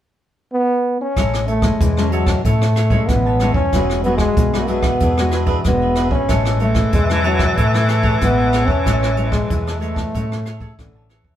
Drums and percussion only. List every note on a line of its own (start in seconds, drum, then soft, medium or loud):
1.17 kick medium
1.17 cross-stick medium
1.17 closed hi-hat medium
1.34 cross-stick medium
1.48 closed hi-hat medium
1.62 kick medium
1.62 cross-stick medium
1.62 closed hi-hat soft
1.81 kick medium
1.81 closed hi-hat medium
1.97 cross-stick medium
2.12 closed hi-hat soft
2.27 kick medium
2.27 cross-stick medium
2.27 closed hi-hat soft
2.45 kick medium
2.45 closed hi-hat medium
2.62 cross-stick medium
2.76 cross-stick medium
2.76 closed hi-hat soft
2.90 kick medium
2.90 closed hi-hat soft
3.08 kick medium
3.08 cross-stick medium
3.08 closed hi-hat medium
3.40 cross-stick medium
3.40 closed hi-hat soft
3.54 kick medium
3.73 kick medium
3.73 cross-stick medium
3.73 closed hi-hat medium
3.90 cross-stick medium
4.04 closed hi-hat soft
4.18 kick medium
4.18 cross-stick medium
4.37 kick loud
4.37 closed hi-hat medium
4.54 cross-stick medium
4.68 closed hi-hat soft
4.82 kick medium
4.82 cross-stick medium
4.82 closed hi-hat soft
5.00 kick medium
5.00 closed hi-hat medium
5.18 cross-stick medium
5.31 cross-stick medium
5.31 closed hi-hat soft
5.46 kick medium
5.46 closed hi-hat soft
5.64 kick medium
5.64 cross-stick medium
5.64 closed hi-hat medium
5.95 cross-stick medium
5.95 closed hi-hat soft
6.11 kick medium
6.29 kick medium
6.29 cross-stick medium
6.29 closed hi-hat medium
6.45 cross-stick medium
6.60 closed hi-hat soft
6.75 kick medium
6.75 cross-stick medium
6.75 closed hi-hat soft
6.93 kick medium
6.93 closed hi-hat medium
7.10 cross-stick medium
7.24 closed hi-hat soft
7.39 kick medium
7.39 cross-stick medium
7.39 closed hi-hat soft
7.57 kick medium
7.57 closed hi-hat medium
7.74 cross-stick medium
7.88 cross-stick medium
7.88 closed hi-hat soft
8.03 kick medium
8.03 closed hi-hat soft
8.21 kick medium
8.21 cross-stick medium
8.21 closed hi-hat medium
8.53 cross-stick medium
8.53 closed hi-hat soft
8.68 kick medium
8.86 kick medium
8.86 cross-stick medium
8.86 closed hi-hat medium
9.03 cross-stick medium
9.17 closed hi-hat soft
9.32 kick medium
9.32 cross-stick medium
9.50 kick medium
9.50 closed hi-hat medium
9.67 cross-stick medium
9.82 closed hi-hat soft
9.96 kick medium
9.96 cross-stick medium
9.96 closed hi-hat soft
10.15 kick medium
10.15 closed hi-hat medium
10.32 cross-stick medium
10.46 cross-stick medium
10.46 closed hi-hat soft
10.61 kick medium
10.61 closed hi-hat soft
10.79 kick medium
10.79 cross-stick medium
10.79 closed hi-hat medium
11.10 cross-stick medium
11.10 closed hi-hat soft
11.25 kick medium